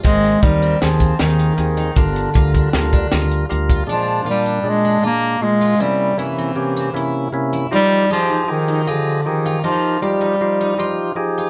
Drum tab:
HH |xxxxxxxxxx|xxxxxxxxxx|----------|----------|
SD |-o--o-o---|----o-o---|----------|----------|
BD |o-o--o----|o-oo-o---o|----------|----------|

HH |----------|----------|
SD |----------|----------|
BD |----------|----------|